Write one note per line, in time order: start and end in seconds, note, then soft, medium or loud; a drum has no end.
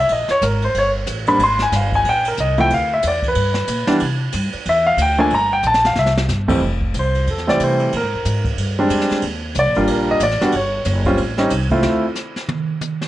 0.09 0.28 A#1 medium
0.09 0.30 D#5 medium
0.09 ride medium
0.28 0.42 C#5 loud
0.28 muted upright bass stroke soft
0.28 snare soft
0.41 0.73 G#1 medium
0.41 0.62 A#4 medium
0.41 hi-hat pedal medium
0.41 ride medium
0.62 0.75 C5 medium
0.62 ride soft
0.74 1.06 G1 medium
0.74 0.89 C#5 medium
0.74 ride medium
1.06 1.38 A1 medium
1.06 hi-hat pedal medium
1.06 ride medium
1.27 1.39 G3 medium
1.27 1.39 A#3 medium
1.27 1.39 C4 medium
1.27 1.39 D4 medium
1.27 1.40 B5 loud
1.27 ride soft
1.38 1.71 G#1 medium
1.38 ride medium
1.43 1.61 C6 loud
1.59 1.73 G#5 medium
1.59 snare soft
1.72 2.04 G1 medium
1.72 snare soft
1.72 hi-hat pedal medium
1.72 ride medium
1.76 1.94 F5 medium
1.92 2.06 G#5 medium
1.92 kick medium
1.92 ride soft
2.05 2.36 A#1 medium
2.05 ride medium
2.09 2.27 G5 medium
2.25 2.39 A#4 medium
2.25 ride medium
2.37 2.69 C2 medium
2.37 2.59 D#5 medium
2.37 hi-hat pedal medium
2.57 2.69 F3 medium
2.57 2.69 A3 medium
2.57 2.69 C4 medium
2.57 2.69 E4 medium
2.57 2.71 G5 loud
2.57 ride soft
2.70 3.02 D2 medium
2.70 2.92 F5 medium
2.70 ride medium
2.94 3.04 E5 medium
3.03 3.35 E2 medium
3.03 hi-hat pedal medium
3.03 ride medium
3.08 3.25 D5 medium
3.23 kick medium
3.23 ride soft
3.28 3.99 B4 medium
3.35 3.67 G2 medium
3.35 ride medium
3.54 snare medium
3.67 3.87 A#2 medium
3.67 hi-hat pedal medium
3.67 ride medium
3.87 3.99 E3 medium
3.87 3.99 G3 medium
3.87 3.99 B3 medium
3.87 3.99 D4 medium
3.87 muted upright bass stroke soft
3.87 snare medium
3.87 ride soft
4.00 4.33 C3 medium
4.00 ride medium
4.32 4.52 G2 loud
4.32 hi-hat pedal medium
4.32 ride medium
4.52 muted upright bass stroke soft
4.52 ride soft
4.65 4.96 E2 medium
4.65 4.87 E5 medium
4.65 ride medium
4.87 4.99 F5 medium
4.97 5.29 D2 medium
4.97 hi-hat pedal medium
4.97 ride medium
5.02 5.20 G5 medium
5.18 5.30 F3 medium
5.18 5.30 A3 medium
5.18 5.30 A#3 medium
5.18 5.30 D4 medium
5.18 5.32 G#5 loud
5.30 5.62 G1 medium
5.30 ride medium
5.34 5.52 A#5 loud
5.53 5.64 G5 loud
5.63 5.95 A#1 loud
5.63 hi-hat pedal medium
5.67 5.85 A5 loud
5.74 snare medium
5.85 5.97 F5 medium
5.85 snare medium
5.95 6.28 C2 medium
5.95 6.10 E5 medium
5.95 snare medium
6.06 snare medium
6.17 snare loud
6.29 6.60 G1 medium
6.29 snare medium
6.29 hi-hat pedal medium
6.48 6.60 F2 medium
6.48 6.60 E3 medium
6.48 6.60 G3 medium
6.48 6.60 A3 medium
6.48 6.60 C4 medium
6.48 kick medium
6.48 crash medium
6.61 6.93 F1 medium
6.81 kick medium
6.94 7.26 C2 medium
6.94 hi-hat pedal soft
6.94 ride medium
6.99 7.27 C5 medium
7.15 ride soft
7.27 7.39 F2 medium
7.27 7.48 A4 medium
7.27 ride medium
7.38 7.49 E2 medium
7.38 snare soft
7.47 7.59 C2 medium
7.47 7.90 E3 medium
7.47 7.90 G3 medium
7.47 7.90 A3 medium
7.47 7.90 C4 medium
7.47 7.60 D5 medium
7.47 snare soft
7.60 7.91 C3 medium
7.60 7.92 C5 medium
7.60 hi-hat pedal soft
7.60 ride medium
7.79 ride soft
7.92 8.03 A#2 medium
7.92 ride medium
7.97 8.44 A#4 medium
8.03 8.14 G#2 medium
8.14 8.24 F2 medium
8.25 8.57 G#2 medium
8.25 hi-hat pedal medium
8.25 ride medium
8.45 kick medium
8.45 ride soft
8.57 8.89 G2 medium
8.57 ride medium
8.79 9.21 G3 medium
8.79 9.21 G#3 medium
8.79 9.21 C4 medium
8.79 9.21 D4 medium
8.89 9.09 F2 medium
8.89 hi-hat pedal medium
8.89 ride medium
9.01 snare soft
9.10 muted upright bass stroke soft
9.10 snare soft
9.10 ride soft
9.22 9.54 D#2 medium
9.22 ride medium
9.55 9.66 C2 loud
9.55 hi-hat pedal medium
9.55 ride medium
9.59 9.88 D5 medium
9.66 9.77 A#1 medium
9.75 9.87 G1 medium
9.75 10.19 G3 medium
9.75 10.19 A#3 medium
9.75 10.19 D4 medium
9.75 10.19 F4 medium
9.75 ride soft
9.87 10.19 A#1 medium
9.87 ride medium
9.92 10.10 A#4 medium
10.11 10.22 D#5 loud
10.20 10.39 A1 medium
10.20 10.52 D5 medium
10.20 hi-hat pedal medium
10.20 ride medium
10.31 snare soft
10.41 10.52 G3 medium
10.41 10.52 B3 medium
10.41 10.53 D4 medium
10.41 10.53 F#4 medium
10.41 muted upright bass stroke soft
10.41 snare soft
10.41 ride soft
10.52 10.85 G1 medium
10.52 ride medium
10.56 11.04 C#5 medium
10.85 11.18 F#1 medium
10.85 hi-hat pedal medium
10.85 ride medium
11.05 11.17 G3 medium
11.05 11.17 C4 medium
11.05 11.18 C#4 medium
11.05 11.18 F4 medium
11.05 kick medium
11.05 ride soft
11.17 11.50 A1 medium
11.17 ride medium
11.38 11.50 G3 medium
11.38 11.50 C4 medium
11.38 11.50 C#4 medium
11.38 11.50 D#4 medium
11.38 snare soft
11.50 11.83 C2 medium
11.50 hi-hat pedal medium
11.50 ride medium
11.70 12.04 A3 medium
11.70 12.04 C4 medium
11.70 12.04 E4 medium
11.70 12.04 F4 medium
11.70 kick medium
11.70 ride soft
11.83 12.04 D2 medium
11.83 snare loud
12.15 snare soft
12.15 hi-hat pedal medium
12.36 snare soft
12.49 high tom medium
12.81 hi-hat pedal medium
12.81 high tom medium
13.01 snare soft